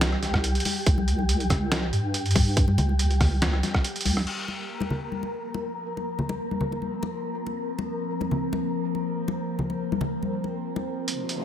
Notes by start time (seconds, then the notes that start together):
Already playing: C2 G3 G4
0.01 snare, closed hi-hat
0.12 cross-stick
0.23 snare, closed hi-hat
0.34 kick, cross-stick
0.44 closed hi-hat
0.55 closed hi-hat
0.60 closed hi-hat
0.65 open hi-hat, high conga
0.86 C2, kick, closed hi-hat
0.98 high conga
1.08 closed hi-hat
1.19 high conga
1.29 closed hi-hat
1.40 closed hi-hat
1.50 C2, kick, cross-stick, closed hi-hat, low conga
1.72 snare, closed hi-hat
1.93 G2, closed hi-hat
2.14 closed hi-hat
2.26 closed hi-hat
2.31 closed hi-hat
2.35 kick, open hi-hat, high conga
2.57 kick, closed hi-hat
2.68 high conga
2.78 C#2, closed hi-hat, low conga
2.89 high conga
2.99 closed hi-hat
3.11 closed hi-hat
3.20 kick, cross-stick, open hi-hat, low conga
3.42 snare, closed hi-hat
3.53 cross-stick
3.63 snare, closed hi-hat, high conga
3.74 kick, cross-stick
3.84 closed hi-hat
3.96 closed hi-hat
4.01 closed hi-hat
4.05 C2, open hi-hat, high conga
4.17 cross-stick
4.27 F3 A#3 C4 A#4, crash
4.48 muted conga
4.80 muted conga, high conga
4.90 low conga
5.12 high conga
5.23 muted conga
5.54 muted conga
5.97 muted conga
6.19 low conga
6.29 muted conga
6.51 high conga
6.61 low conga
6.72 muted conga
6.82 high conga
7.03 muted conga
7.46 muted conga
7.79 muted conga
8.21 muted conga, high conga
8.31 low conga
8.53 muted conga, high conga
8.95 muted conga
9.28 muted conga
9.59 low conga
9.70 muted conga
9.92 high conga
10.01 muted conga, low conga
10.23 high conga
10.44 muted conga
10.76 muted conga
11.08 F1 F3 C4 C5, closed hi-hat, riser
11.29 closed hi-hat